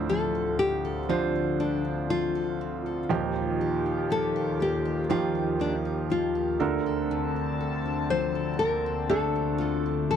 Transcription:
Already playing: grand piano D2 A2 F3 D4 C5, analog synth pad D2 D3 C4 F4, steel-string acoustic guitar D3 D4 A4
0.09 steel-string acoustic guitar F3, nylon-string guitar A4
0.35 steel-string acoustic guitar A4
0.59 steel-string acoustic guitar C4, nylon-string guitar G4
0.85 steel-string acoustic guitar A4
1.09 steel-string acoustic guitar D3, grand piano F3 D4 C5, nylon-string guitar F4
1.35 steel-string acoustic guitar D4
1.60 nylon-string guitar D4, steel-string acoustic guitar A4
1.85 steel-string acoustic guitar D4
2.10 steel-string acoustic guitar F3, nylon-string guitar F4
2.35 steel-string acoustic guitar A4
2.61 steel-string acoustic guitar C4
2.86 steel-string acoustic guitar A4
3.08 analog synth pad D#2 D#3 G4, grand piano D#2 A#2 F3 D#4 G4, steel-string acoustic guitar D#3
3.36 steel-string acoustic guitar D#4
3.61 steel-string acoustic guitar G4
3.86 steel-string acoustic guitar D#4
4.10 steel-string acoustic guitar F3, nylon-string guitar A4
4.36 steel-string acoustic guitar G4
4.60 steel-string acoustic guitar A#3, nylon-string guitar G4
4.85 steel-string acoustic guitar G4
5.09 steel-string acoustic guitar D#3, grand piano D#3 F3 G4, nylon-string guitar F4
5.35 steel-string acoustic guitar D#4
5.59 nylon-string guitar D4, steel-string acoustic guitar G4
5.85 steel-string acoustic guitar D#4
6.10 steel-string acoustic guitar F3, nylon-string guitar F4
6.35 steel-string acoustic guitar G4
6.59 analog synth pad D2 D3 C4 A5, grand piano D2 D3 D4 A4 A#4, steel-string acoustic guitar D3
6.86 steel-string acoustic guitar A4
7.11 steel-string acoustic guitar D3
7.36 steel-string acoustic guitar D4
7.60 steel-string acoustic guitar A4
7.85 steel-string acoustic guitar D4
8.10 steel-string acoustic guitar F3, nylon-string guitar C5
8.35 steel-string acoustic guitar A4
8.59 steel-string acoustic guitar A#3, nylon-string guitar A#4
8.86 steel-string acoustic guitar A4
9.09 steel-string acoustic guitar D3, grand piano A3 D4 A4, nylon-string guitar A4
9.35 steel-string acoustic guitar D4
9.58 nylon-string guitar F4, steel-string acoustic guitar A4
9.86 steel-string acoustic guitar D4
10.11 steel-string acoustic guitar F3, nylon-string guitar A4

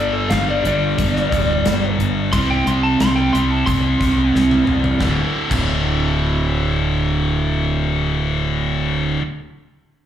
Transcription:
Already playing: fingered electric bass G1, distorted electric guitar G2 D3 G3
0.00 lead electric guitar D5
0.13 lead electric guitar A4
0.30 fingered electric bass G1, lead electric guitar F5, snare, closed hi-hat
0.50 lead electric guitar D5
0.64 fingered electric bass G1, distorted electric guitar G2 D3 G3, lead electric guitar D5, closed hi-hat
0.98 fingered electric bass G1, kick, closed hi-hat
1.16 snare
1.32 fingered electric bass D1, kick, closed hi-hat
1.66 fingered electric bass G1, snare, closed hi-hat
2.00 fingered electric bass G1, closed hi-hat
2.32 fingered electric bass C2, distorted electric guitar C3 G3 C4, lead electric guitar C6, kick, closed hi-hat
2.50 lead electric guitar G5
2.67 fingered electric bass C2, lead electric guitar C6, closed hi-hat
2.83 lead electric guitar A5
3.00 fingered electric bass C2, lead electric guitar C6, snare, closed hi-hat
3.16 lead electric guitar G5
3.33 fingered electric bass C2, distorted electric guitar C3 G3 C4, lead electric guitar C6, closed hi-hat
3.51 lead electric guitar A5
3.66 fingered electric bass C2, lead electric guitar C6, kick, closed hi-hat
4.01 fingered electric bass C2, kick, snare, closed hi-hat
4.35 fingered electric bass C2, snare
4.51 high tom
4.67 fingered electric bass C2, mid tom
4.84 floor tom
5.00 fingered electric bass D1, distorted electric guitar D2 A2 D3, kick, snare
5.50 fingered electric bass D1, distorted electric guitar D2 A2 D3, kick, crash

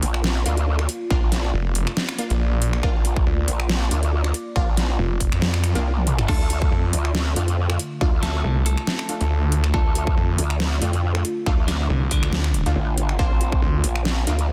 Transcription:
Already playing: ambient pad A#3 F4 D5
0.03 wobble bass A#1, open hi-hat
0.14 finger snap
0.24 snare
0.46 wobble bass D2, synth stab A#3 D4 F4, closed hi-hat
0.57 closed hi-hat
0.79 finger snap
0.89 closed hi-hat
1.10 wobble bass A#1, synth stab A#3 D4 F4, kick
1.32 snare, closed hi-hat
1.54 detuned saw bass F1
1.75 open hi-hat
1.87 finger snap
1.97 snare
2.09 finger snap
2.18 synth stab A#3 D4 F4, closed hi-hat
2.30 detuned saw bass A#1, closed hi-hat
2.62 closed hi-hat
2.73 finger snap
2.83 wobble bass A#1, synth stab A#3 D4 F4, kick
3.05 closed hi-hat
3.16 kick
3.26 detuned saw bass D2
3.48 wobble bass A#1, open hi-hat
3.60 finger snap
3.69 snare
3.91 wobble bass D2, synth stab A#3 D4 F4, closed hi-hat
4.03 closed hi-hat
4.24 finger snap
4.34 closed hi-hat
4.56 wobble bass A#1, synth stab A#3 D4 F4, kick
4.77 snare, closed hi-hat
4.99 detuned saw bass F1
5.21 kick, open hi-hat
5.32 detuned saw bass F2, finger snap
5.42 snare
5.54 finger snap
5.64 finger snap, closed hi-hat
5.75 wobble bass C2, synth stab A#3 D4 F4, closed hi-hat
5.97 high tom
6.07 closed hi-hat, mid tom
6.19 finger snap, mid tom
6.28 wobble bass D2, ambient pad D3 A3 F4, clean electric guitar A3 A4, synth stab A3 D4 F4, kick, crash
6.50 closed hi-hat
6.62 kick
6.72 detuned saw bass F2
6.93 wobble bass D2, open hi-hat
7.05 finger snap
7.15 snare
7.36 wobble bass F2, synth stab A3 D4 F4, closed hi-hat
7.48 closed hi-hat
7.70 finger snap
7.79 closed hi-hat
8.01 wobble bass D2, synth stab A3 D4 F4, kick
8.23 clean electric guitar A3 A4, snare, closed hi-hat
8.44 detuned saw bass C2
8.66 clean electric guitar A3 A4, open hi-hat
8.77 finger snap
8.87 snare
8.99 finger snap
9.09 synth stab A3 D4 F4, closed hi-hat
9.21 detuned saw bass D2, closed hi-hat
9.52 closed hi-hat
9.64 finger snap
9.74 wobble bass D2, synth stab A3 D4 F4, clean electric guitar A3 A4, kick
9.95 closed hi-hat
10.07 kick
10.17 detuned saw bass F2
10.38 wobble bass D2, open hi-hat
10.50 finger snap
10.60 snare
10.82 wobble bass F2, synth stab A3 D4 F4, closed hi-hat
10.93 closed hi-hat
11.15 finger snap
11.25 closed hi-hat
11.46 wobble bass D2, synth stab A3 D4 F4, kick
11.68 clean electric guitar D3 D4, snare, closed hi-hat
11.90 detuned saw bass C2
12.11 clean electric guitar D3 D4, kick, open hi-hat
12.23 detuned saw bass D2, finger snap
12.33 snare
12.44 finger snap
12.54 closed hi-hat
12.66 detuned saw bass D2, synth stab A3 D4 F4, closed hi-hat
12.76 wobble bass A1
12.98 closed hi-hat
13.09 finger snap
13.19 wobble bass A#1, ambient pad A#3 D5, synth stab A#3 D4 F4, clean electric guitar C4 C5, kick
13.41 closed hi-hat
13.52 kick
13.62 detuned saw bass D2
13.84 wobble bass A#1, open hi-hat
13.96 finger snap
14.05 snare
14.27 wobble bass D2, synth stab A#3 D4 F4, closed hi-hat
14.39 closed hi-hat

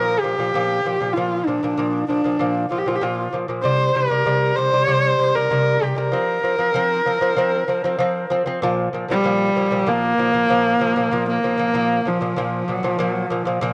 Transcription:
Already playing: lute A#2 F3, horsehead fiddle A#4
0.20 lute A#2, horsehead fiddle G4
0.24 lute F3
0.38 lute A#2 F3
0.54 lute A#2 F3
0.85 lute A#2 F3
1.00 lute A#2 F3
1.14 lute A#2 F3, horsehead fiddle F4
1.45 lute A#2 F3, horsehead fiddle D4
1.63 lute A#2 F3
1.77 lute A#2 F3
2.08 lute A#2 F3, horsehead fiddle D4
2.24 lute A#2 F3
2.39 lute A#2 F3
2.71 lute A#2 F3, horsehead fiddle F4
2.78 horsehead fiddle G4
2.86 lute A#2 F3, horsehead fiddle F4
2.95 horsehead fiddle G4
3.01 lute A#2 F3, horsehead fiddle F4
3.33 lute A#2 F3
3.48 lute A#2 F3
3.63 lute C3 G3, horsehead fiddle C5
3.95 lute C3 G3, horsehead fiddle A#4
4.10 lute C3 G3
4.26 lute C3 G3
4.56 lute C3 G3, horsehead fiddle C5
4.72 lute C3 G3
4.87 lute C3 G3
5.19 lute C3 G3
5.35 lute C3 G3, horsehead fiddle A#4
5.50 lute C3 G3
5.81 lute C3 G3, horsehead fiddle G4
5.96 lute C3 G3, horsehead fiddle A#4
6.12 lute F3 C4
6.43 lute F3 C4
6.59 lute F3 C4
6.74 lute F3 C4
7.06 lute F3 C4
7.21 lute F3 C4
7.36 lute F3 C4
7.68 lute F3 C4
7.84 lute F3 C4
7.99 lute F3 C4
8.30 lute F3 C4
8.46 lute F3 C4
8.62 lute A#2 F3
8.93 lute A#2 F3
9.09 lute A#2 F3, horsehead fiddle G3
9.24 lute A#2 F3
9.55 lute A#2 F3
9.71 lute A#2 F3
9.86 lute A#2 F3, horsehead fiddle A#3
10.18 lute A#2 F3
10.33 lute A#2 F3
10.49 lute A#2 F3
10.80 lute A#2 F3
10.96 lute A#2 F3
11.11 lute A#2 F3
11.29 horsehead fiddle A#3
11.43 lute A#2 F3
11.58 lute A#2 F3
11.73 lute A#2 F3
12.05 lute A#2 F3, horsehead fiddle F3
12.21 lute A#2 F3
12.36 lute A#2 F3
12.68 lute A#2 F3
12.73 horsehead fiddle F#3
12.83 lute A#2 F3
12.91 horsehead fiddle F3
12.99 lute A#2 F3
13.10 horsehead fiddle F#3
13.28 lute A#2 F3, horsehead fiddle F3
13.45 lute A#2 F3
13.61 lute A#2 F3

